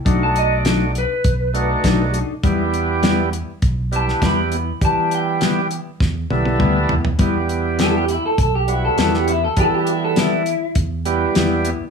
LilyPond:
<<
  \new Staff \with { instrumentName = "Clean electric guitar" } { \time 4/4 \key e \minor \tempo 4 = 101 g''16 a''16 dis''16 d''8. b'2 r8 | r2 r8 a''8 b''4 | a''8 g''4 r2 r8 | r4 a'16 g'16 e'16 a'16 a'16 g'16 e'16 a'16 a'16 g'16 e'16 a'16 |
a'16 g'16 e'16 a'16 e'4 r2 | }
  \new Staff \with { instrumentName = "Tonewheel organ" } { \time 4/4 \key e \minor <a d' dis' fis'>4. r4 <a d' dis' fis'>4 r8 | <g b e' g'>4. r4 <g b e' g'>4 r8 | <g b e' g'>4. r4 <g b e' a'>4 r8 | <g b e' g'>4. r4 <g b e' fis'>4 r8 |
<g b e' a'>4. r4 <g b e' g'>4 r8 | }
  \new Staff \with { instrumentName = "Clean electric guitar" } { \time 4/4 \key e \minor <fis d' dis' a'>8 r8 <fis d' dis' a'>8 r4. <fis d' dis' a'>8 <d' dis' a'>8 | <g b e'>8 r8 <g b e'>8 r4. <g b e'>8 <b e'>8 | r4 <g b e'>8 r4. <g b e'>8 <b e'>8 | <g b e'>8 r8 <g b e'>8 r4. <g b e'>8 <b e'>8 |
r4 <g b e'>8 r4. <g b e'>8 <b e'>8 | }
  \new Staff \with { instrumentName = "Fingered electric bass" } { \clef bass \time 4/4 \key e \minor b,,2 b,,4 b,,8. r16 | e,2 b,,4 e,4 | e2 e,8 b,,8 d,8 e,8 | e,2 b,,4 e,4 |
e2 e,4 e,8. r16 | }
  \new DrumStaff \with { instrumentName = "Drums" } \drummode { \time 4/4 <hh bd>8 hh8 <hh sn>8 hh8 <hh bd>8 hh8 <hh bd sn>8 hh8 | <hh bd>8 hh8 <hh sn>8 hh8 <hh bd>8 hh16 sn16 <hh bd sn>8 hh8 | <hh bd>8 hh8 <hh sn>8 hh8 <bd sn>8 tommh16 tommh16 <bd toml>8 tomfh16 tomfh16 | <hh bd>8 hh8 <hh sn>8 hh8 <hh bd>8 hh8 <hh sn>16 sn16 hh8 |
<hh bd>8 hh8 <hh sn>8 hh8 <hh bd>8 hh8 <hh sn>8 hh8 | }
>>